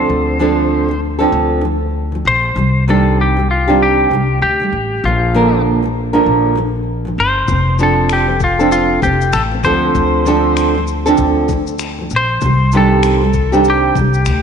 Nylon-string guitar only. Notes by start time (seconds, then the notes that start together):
Already playing: D3 F3 C4 D4 A4
0.39 D3 F3 C4 D4 A4
0.89 D3 F3
1.19 D3 F3 C4 D4 A4
1.61 D3 F3
2.12 D3 F3
2.55 C3 D#3 G3
2.88 C3 D#3 G3 C4 D4 G4
3.37 C3 D#3 G3
3.68 C3 D#3 G3 C4 D4 G4
4.11 C3 D#3 G3
4.60 C3 D#3 G3
5.04 A#2 D3 F3
5.34 A#2 D3 F3 A#3 D4 A#4
5.83 A#2 D3 F3
6.13 A#2 D3 F3 A#3 D4 A#4
6.55 A#2 D3 F3
7.05 A#2 D3 F3
7.48 F3 C4
7.79 F3 C4 D4 A4
8.29 F3 C4
8.59 F3 C4 D4 A4
9.02 F3 C4
9.51 F3 C4
9.64 D3 F3 C4 D4 A4
10.25 D3 F3 C4 D4 A4
10.75 D3 F3
11.06 D3 F3 C4 D4 A4
11.49 D3 F3
11.98 D3 F3
12.42 C3 D#3 G3
12.73 C3 D#3 G3 C4 D4 G4
13.24 D#3 G3
13.52 C3 D#3 G3 C4 D4 G4
13.96 C3 D#3 G3